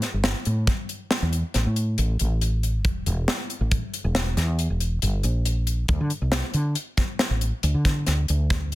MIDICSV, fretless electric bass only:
0, 0, Header, 1, 2, 480
1, 0, Start_track
1, 0, Tempo, 435098
1, 3144, Time_signature, 7, 2, 24, 8
1, 9653, End_track
2, 0, Start_track
2, 0, Title_t, "Fretless electric bass"
2, 0, Program_c, 0, 35
2, 152, Note_on_c, 0, 31, 73
2, 367, Note_off_c, 0, 31, 0
2, 512, Note_on_c, 0, 45, 77
2, 727, Note_off_c, 0, 45, 0
2, 1349, Note_on_c, 0, 40, 70
2, 1565, Note_off_c, 0, 40, 0
2, 1712, Note_on_c, 0, 33, 82
2, 1818, Note_off_c, 0, 33, 0
2, 1834, Note_on_c, 0, 45, 74
2, 2157, Note_off_c, 0, 45, 0
2, 2190, Note_on_c, 0, 33, 81
2, 2405, Note_off_c, 0, 33, 0
2, 2435, Note_on_c, 0, 33, 80
2, 3144, Note_off_c, 0, 33, 0
2, 3144, Note_on_c, 0, 28, 86
2, 3362, Note_off_c, 0, 28, 0
2, 3381, Note_on_c, 0, 28, 76
2, 3601, Note_off_c, 0, 28, 0
2, 3979, Note_on_c, 0, 33, 74
2, 4200, Note_off_c, 0, 33, 0
2, 4460, Note_on_c, 0, 28, 79
2, 4790, Note_off_c, 0, 28, 0
2, 4822, Note_on_c, 0, 40, 91
2, 5151, Note_off_c, 0, 40, 0
2, 5187, Note_on_c, 0, 28, 73
2, 5513, Note_off_c, 0, 28, 0
2, 5545, Note_on_c, 0, 31, 79
2, 5763, Note_off_c, 0, 31, 0
2, 5778, Note_on_c, 0, 34, 83
2, 6458, Note_off_c, 0, 34, 0
2, 6498, Note_on_c, 0, 38, 77
2, 6610, Note_off_c, 0, 38, 0
2, 6625, Note_on_c, 0, 50, 80
2, 6734, Note_off_c, 0, 50, 0
2, 6857, Note_on_c, 0, 36, 72
2, 7079, Note_off_c, 0, 36, 0
2, 7215, Note_on_c, 0, 50, 80
2, 7438, Note_off_c, 0, 50, 0
2, 8058, Note_on_c, 0, 33, 70
2, 8280, Note_off_c, 0, 33, 0
2, 8422, Note_on_c, 0, 38, 78
2, 8533, Note_off_c, 0, 38, 0
2, 8543, Note_on_c, 0, 50, 69
2, 8872, Note_off_c, 0, 50, 0
2, 8909, Note_on_c, 0, 38, 75
2, 9126, Note_off_c, 0, 38, 0
2, 9152, Note_on_c, 0, 38, 71
2, 9653, Note_off_c, 0, 38, 0
2, 9653, End_track
0, 0, End_of_file